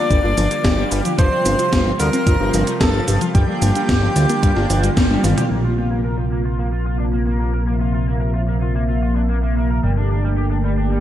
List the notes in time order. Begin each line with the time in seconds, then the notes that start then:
Already playing: D3 G3 A#3 F4 D5 D6
0.10 G1 G3 D4, kick, closed hi-hat, cabasa
0.24 G1 D4 F4
0.37 G1 F3 D4, open hi-hat, cabasa
0.51 G3 A#3, closed hi-hat, cabasa
0.64 G1 G3 A#3, kick, snare, closed hi-hat, cabasa
0.78 G3 D4
0.92 G1 G3 F4, open hi-hat, cabasa
1.05 F3 G4, closed hi-hat, cabasa
1.18 G1 C3 F3 C5 C6, kick, closed hi-hat, cabasa
1.32 G3 C4
1.45 G1 C4, open hi-hat, cabasa
1.59 F3 F4, closed hi-hat, cabasa
1.73 G1 F4 G4, kick, snare, closed hi-hat, cabasa
1.86 F3 C4
1.99 D2 F3 G3 A#4 A#5, open hi-hat, cabasa
2.13 C4, closed hi-hat, cabasa
2.27 G1 F3 F4, kick, closed hi-hat, cabasa
2.40 G1 C4 G4
2.54 G1 F3 C4, open hi-hat, cabasa
2.67 G3 A3, closed hi-hat, cabasa
2.80 G1 F3 C4 A4 A5, kick, snare, closed hi-hat, cabasa
2.94 F3 F4
3.08 G1 F3 G4, open hi-hat, cabasa
3.21 F3 F4, closed hi-hat, cabasa
3.35 G1 D3 F3 G3 A#3 F4 G4 G5, kick, closed hi-hat, cabasa
3.48 G3 D4
3.62 G1 A#3 D4, open hi-hat, cabasa
3.75 G3 D4, closed hi-hat, cabasa
3.89 G1 F4 G4, kick, snare, closed hi-hat, cabasa
4.02 F3 D4
4.16 D2 G3, open hi-hat, cabasa
4.29 A#3 D4, closed hi-hat, cabasa
4.43 G2 G3 D4, kick, closed hi-hat, cabasa
4.56 G1 D4 F4, snare
4.70 G1 F3 D4, open hi-hat, cabasa
4.83 G3 A#3, closed hi-hat, cabasa
4.97 G1 G3 A#3, kick, snare, closed hi-hat, cabasa
5.10 G3 D4, high tom
5.24 G1 G3 F4, open hi-hat, mid tom, cabasa
5.37 F3 G4, closed hi-hat, mid tom, cabasa
5.51 A#1 C3 F3 A#3 F4
5.65 F4
5.78 F4
5.92 A#3
6.05 A#4
6.19 F4
6.32 A#3
6.45 F4
6.59 A#3
6.73 F4
6.86 F4
7.00 D4
7.13 A#3
7.27 A#3
7.40 A#3
7.54 A#4
7.67 A#3 E5
7.81 F4
7.94 F4
8.08 A#3
8.21 A#4
8.35 F4
8.48 A#3
8.62 F4
8.75 A#3
8.89 F4
9.03 F4
9.16 D4
9.29 A#3
9.43 A#3
9.57 A#3
9.70 A#4
9.84 G1 D3 G3 A3 G4
9.97 D4
10.11 D4
10.24 G3
10.38 G4
10.51 D4
10.65 G3
10.78 D4
10.92 G3